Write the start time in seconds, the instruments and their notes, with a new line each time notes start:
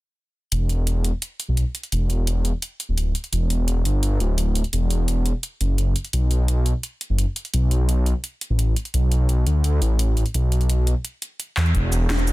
0.52 detuned saw bass E1, closed hi-hat
0.69 closed hi-hat
0.87 closed hi-hat
1.04 closed hi-hat
1.22 closed hi-hat
1.40 closed hi-hat
1.48 detuned saw bass B1
1.57 closed hi-hat
1.75 closed hi-hat
1.83 closed hi-hat
1.92 detuned saw bass E1, closed hi-hat
2.10 closed hi-hat
2.27 closed hi-hat
2.45 closed hi-hat
2.62 closed hi-hat
2.80 closed hi-hat
2.89 detuned saw bass D1
2.98 closed hi-hat
3.15 closed hi-hat
3.24 closed hi-hat
3.33 detuned saw bass E1, closed hi-hat
3.50 closed hi-hat
3.68 closed hi-hat
3.85 detuned saw bass G1, closed hi-hat
4.03 closed hi-hat
4.20 detuned saw bass D1, closed hi-hat
4.38 closed hi-hat
4.55 closed hi-hat
4.64 closed hi-hat
4.73 detuned saw bass E1, closed hi-hat
4.90 closed hi-hat
5.08 closed hi-hat
5.26 closed hi-hat
5.43 closed hi-hat
5.61 detuned saw bass F#1, closed hi-hat
5.78 closed hi-hat
5.96 closed hi-hat
6.05 closed hi-hat
6.13 detuned saw bass B1, closed hi-hat
6.31 closed hi-hat
6.48 closed hi-hat
6.66 closed hi-hat
6.83 closed hi-hat
7.01 closed hi-hat
7.10 detuned saw bass F#1
7.18 closed hi-hat
7.36 closed hi-hat
7.45 closed hi-hat
7.54 detuned saw bass B1, closed hi-hat
7.71 closed hi-hat
7.89 closed hi-hat
8.06 closed hi-hat
8.24 closed hi-hat
8.41 closed hi-hat
8.50 detuned saw bass A1
8.59 closed hi-hat
8.76 closed hi-hat
8.85 closed hi-hat
8.94 detuned saw bass B1, closed hi-hat
9.12 closed hi-hat
9.29 closed hi-hat
9.47 detuned saw bass D2, closed hi-hat
9.64 closed hi-hat
9.82 detuned saw bass A1, closed hi-hat
9.99 closed hi-hat
10.17 closed hi-hat
10.26 closed hi-hat
10.34 detuned saw bass B1, closed hi-hat
10.52 closed hi-hat
10.61 closed hi-hat
10.70 closed hi-hat
10.87 closed hi-hat
11.05 closed hi-hat
11.22 closed hi-hat
11.40 closed hi-hat
11.57 detuned saw bass E2, clap, closed hi-hat
11.66 closed hi-hat
11.75 detuned saw bass E1, kick, closed hi-hat
11.92 closed hi-hat, shaker
12.10 snare, closed hi-hat
12.19 shaker
12.27 closed hi-hat, shaker